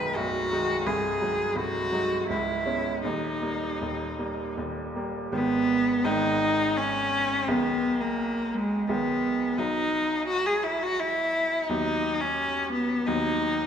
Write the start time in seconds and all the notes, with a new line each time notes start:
Already playing: B0 B1 D#3 G#3 D#4 B4
0.16 B0 B1 F#4
0.51 D#3 G#3 D#4
0.86 C1 C2 G#4
1.21 F#3 G#3 D#4
1.56 C1 C2 F#4
1.91 F#3 G#3 D#4
2.29 C#1 C#2 E4
2.66 G#3 B3 C#4
3.04 D#1 D#2 D#4
3.42 G3 A#3
3.81 D#1 D#2
4.19 G3 A#3
4.57 D#1 D#2
4.96 G3 A#3
5.32 G#1 D#3 G#3 B3
6.04 G#1 D#3 G#3 B3 D#4
6.77 C#4
7.48 B1 D#3 G#3 B3
8.01 A#3
8.54 G#3
8.89 B1 D#3 G#3 B3
9.58 B1 F#3 B3 D#4
10.28 F#4
10.46 G#4
10.64 E4
10.82 F#4
10.99 E4
11.68 D#2 F#3 B3 D#4
12.21 C#4
12.72 B3
13.06 D#2 F#3 B3 D#4